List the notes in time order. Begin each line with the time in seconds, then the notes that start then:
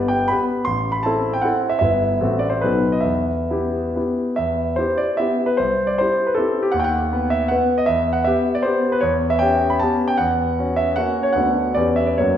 Already playing: G1 B3 G4 B4 D5
0.08 G5
0.28 B3 G4 B4 B5
0.65 A1 C6
0.92 B5
1.03 C4 E4 A4 A5
1.33 G5
1.42 C4 E4 A4 F#5
1.70 E5
1.79 G1 B3 E4 B4 E5
2.20 A1 C4 F#4 A4
2.39 D5
2.50 C5
2.61 B1 B3 D#4 A4 B4
2.92 D#5
3.00 E2 E5
3.50 B3 E4 G4
3.96 B3 E4 G4
4.36 E2 E5
4.76 E4 G4 C5
4.97 D5
5.17 B3 E4 G4 E5
5.46 B4
5.57 C2 C5
5.87 D5
5.98 E4 G4 C5
6.26 B4
6.35 C4 E4 G4 A4
6.63 G4
6.72 D#2 F#5
6.80 G5
6.84 F#5
7.13 B3 B4
7.30 E5
7.48 B3 B4 F#5
7.78 D#5
7.86 E2 E5
8.13 F#5
8.24 B3 G4 E5
8.55 D5
8.62 B3 G4 C5
8.92 B4
9.01 E2 C#5
9.30 E5
9.39 C#4 G4 G5
9.70 B5
9.79 B3 C#4 G4 A5
10.08 G5
10.18 E2 F#5
10.59 C#4 F#4
10.76 E5
10.96 A#3 C#4 F#4 F#5
11.23 C#5
11.33 D2 B3 D4 F#5
11.37 F#4
11.74 E2 B3 C#4 G4 D5
11.96 E5
12.07 D5
12.18 F#2 A#3 C#4 F#4 C#5